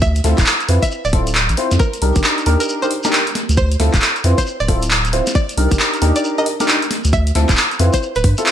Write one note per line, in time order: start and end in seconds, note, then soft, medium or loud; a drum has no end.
0.00 0.21 D2 loud
0.00 0.32 E5 loud
0.00 kick loud
0.00 shekere medium
0.15 closed hi-hat medium
0.15 shekere soft
0.24 0.34 D2 loud
0.24 0.36 C4 medium
0.24 0.36 E4 medium
0.24 0.36 F4 medium
0.24 0.36 A4 medium
0.24 snare soft
0.24 open hi-hat loud
0.38 0.44 D1 loud
0.38 kick loud
0.38 clap medium
0.38 closed hi-hat medium
0.38 shekere medium
0.46 clap loud
0.46 shekere medium
0.60 closed hi-hat soft
0.60 shekere soft
0.69 0.79 F2 medium
0.69 0.81 C4 medium
0.69 0.81 E4 medium
0.69 0.81 F4 medium
0.69 0.81 B4 medium
0.69 open hi-hat medium
0.82 0.95 E5 medium
0.82 kick medium
0.82 closed hi-hat medium
0.82 shekere medium
0.91 shekere medium
1.05 1.49 D1 medium
1.05 1.26 D5 medium
1.05 shekere soft
1.13 1.25 C4 medium
1.13 1.25 E4 medium
1.13 1.25 F4 medium
1.13 1.25 A4 medium
1.13 kick loud
1.13 open hi-hat loud
1.27 closed hi-hat medium
1.27 shekere medium
1.35 clap loud
1.35 shekere medium
1.49 1.55 A1 loud
1.49 closed hi-hat medium
1.49 shekere soft
1.57 1.70 C4 medium
1.57 1.70 E4 medium
1.57 1.70 F4 medium
1.57 1.70 C5 medium
1.57 open hi-hat medium
1.71 1.78 F2 medium
1.71 snare soft
1.71 closed hi-hat medium
1.71 shekere medium
1.79 2.10 A#4 loud
1.79 kick loud
1.79 shekere medium
1.93 closed hi-hat medium
1.93 shekere soft
2.02 2.12 C2 loud
2.02 2.44 D4 medium
2.02 2.44 D#4 medium
2.02 2.44 G4 medium
2.02 2.44 A#4 medium
2.02 open hi-hat loud
2.16 2.22 G1 loud
2.16 kick loud
2.16 closed hi-hat medium
2.16 shekere medium
2.24 clap loud
2.24 shekere medium
2.38 closed hi-hat soft
2.38 shekere soft
2.46 2.57 D#2 medium
2.46 2.79 D4 medium
2.46 2.79 D#4 medium
2.46 2.79 G4 medium
2.46 2.79 A#4 loud
2.46 open hi-hat medium
2.60 2.72 A#4 medium
2.60 closed hi-hat medium
2.60 shekere medium
2.69 shekere medium
2.82 2.90 D4 medium
2.82 2.90 D#4 medium
2.82 2.90 G4 medium
2.82 2.90 A#4 medium
2.82 3.04 C5 medium
2.82 shekere soft
2.91 open hi-hat loud
3.03 3.18 D4 medium
3.03 3.18 D#4 medium
3.03 3.18 G4 medium
3.03 3.18 A#4 medium
3.03 snare soft
3.03 closed hi-hat medium
3.03 shekere medium
3.13 clap loud
3.13 shekere medium
3.27 closed hi-hat medium
3.27 shekere soft
3.35 snare soft
3.35 open hi-hat medium
3.49 3.76 D2 loud
3.49 closed hi-hat medium
3.49 shekere medium
3.57 3.88 C5 loud
3.57 kick loud
3.71 closed hi-hat medium
3.71 shekere soft
3.80 3.90 D2 loud
3.80 3.92 C4 medium
3.80 3.92 E4 medium
3.80 3.92 F4 medium
3.80 3.92 A4 medium
3.80 snare soft
3.80 open hi-hat loud
3.94 4.00 D1 medium
3.94 kick loud
3.94 clap medium
3.94 closed hi-hat medium
3.94 shekere medium
4.01 clap loud
4.01 shekere medium
4.16 closed hi-hat soft
4.16 shekere soft
4.24 4.34 F2 medium
4.24 4.36 C4 medium
4.24 4.36 E4 medium
4.24 4.36 F4 medium
4.24 4.36 B4 medium
4.24 open hi-hat medium
4.38 4.50 C5 medium
4.38 kick medium
4.38 closed hi-hat medium
4.38 shekere medium
4.47 shekere medium
4.60 5.21 D1 medium
4.60 4.82 D5 medium
4.60 shekere soft
4.68 4.81 C4 medium
4.68 4.81 E4 medium
4.68 4.81 F4 medium
4.68 4.81 A4 medium
4.68 kick loud
4.68 open hi-hat loud
4.82 closed hi-hat medium
4.82 shekere medium
4.91 clap loud
4.91 shekere medium
5.05 closed hi-hat medium
5.05 shekere soft
5.13 5.25 C4 medium
5.13 5.25 E4 medium
5.13 5.25 F4 medium
5.13 5.25 C5 medium
5.13 open hi-hat medium
5.27 snare soft
5.27 closed hi-hat medium
5.27 shekere medium
5.35 5.66 D5 medium
5.35 kick loud
5.35 shekere medium
5.49 closed hi-hat medium
5.49 shekere soft
5.57 5.68 C2 loud
5.57 6.00 D4 medium
5.57 6.00 D#4 medium
5.57 6.00 G4 medium
5.57 6.00 A#4 medium
5.57 open hi-hat loud
5.71 5.77 G1 loud
5.71 kick loud
5.71 closed hi-hat medium
5.71 shekere medium
5.80 clap loud
5.80 shekere medium
5.93 closed hi-hat soft
5.93 shekere soft
6.02 6.12 D#2 medium
6.02 6.35 D4 medium
6.02 6.35 D#4 medium
6.02 6.35 G4 medium
6.02 6.35 A#4 loud
6.02 open hi-hat loud
6.16 6.28 D5 medium
6.16 closed hi-hat medium
6.16 shekere medium
6.24 shekere medium
6.38 6.45 D4 medium
6.38 6.45 D#4 medium
6.38 6.45 G4 medium
6.38 6.45 A#4 medium
6.38 6.59 D#5 medium
6.38 shekere soft
6.46 open hi-hat loud
6.60 6.74 D4 medium
6.60 6.74 D#4 medium
6.60 6.74 G4 medium
6.60 6.74 A#4 medium
6.60 snare medium
6.60 closed hi-hat medium
6.60 shekere medium
6.68 clap loud
6.68 shekere medium
6.82 closed hi-hat medium
6.82 shekere soft
6.91 snare soft
6.91 open hi-hat loud
7.04 7.32 D2 loud
7.04 closed hi-hat medium
7.04 shekere medium
7.13 7.43 E5 loud
7.13 kick loud
7.13 shekere medium
7.27 closed hi-hat medium
7.27 shekere soft
7.35 7.46 D2 loud
7.35 7.47 C4 medium
7.35 7.47 E4 medium
7.35 7.47 F4 medium
7.35 7.47 A4 medium
7.35 snare soft
7.35 open hi-hat loud
7.49 7.55 D1 medium
7.49 kick loud
7.49 clap medium
7.49 closed hi-hat medium
7.49 shekere medium
7.57 clap loud
7.71 closed hi-hat soft
7.71 shekere soft
7.79 7.90 F2 medium
7.79 7.92 C4 medium
7.79 7.92 E4 medium
7.79 7.92 F4 medium
7.79 7.92 B4 medium
7.79 open hi-hat loud
7.93 8.06 C5 medium
7.93 kick medium
7.93 closed hi-hat medium
7.93 shekere medium
8.03 shekere medium
8.15 8.24 D1 medium
8.15 8.37 B4 medium
8.15 closed hi-hat soft
8.15 shekere soft
8.24 8.34 G2 medium
8.24 kick loud
8.24 open hi-hat loud
8.38 8.52 C4 medium
8.38 8.52 E4 medium
8.38 8.52 F4 medium
8.38 8.52 A4 medium
8.38 closed hi-hat medium
8.38 shekere medium
8.46 clap loud
8.46 shekere medium